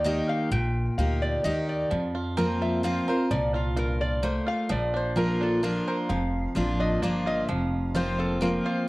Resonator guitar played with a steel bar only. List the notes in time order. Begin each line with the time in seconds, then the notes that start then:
0.06 D#5
0.29 F5
0.52 G5
0.98 F5
1.22 D5
1.44 D#5
1.69 D5
2.62 E5
2.84 F5
3.09 C5
3.31 D5
3.56 F4
3.79 A#4
4.01 D5
4.24 C5
4.48 F5
4.71 D5
4.96 C5
5.18 A#4
5.43 A4
5.65 A#4
5.88 C5
6.09 F5
6.80 D#5
7.04 D5
7.27 D#5
7.49 F5
7.96 C5
8.20 A4
8.42 A#4
8.66 C5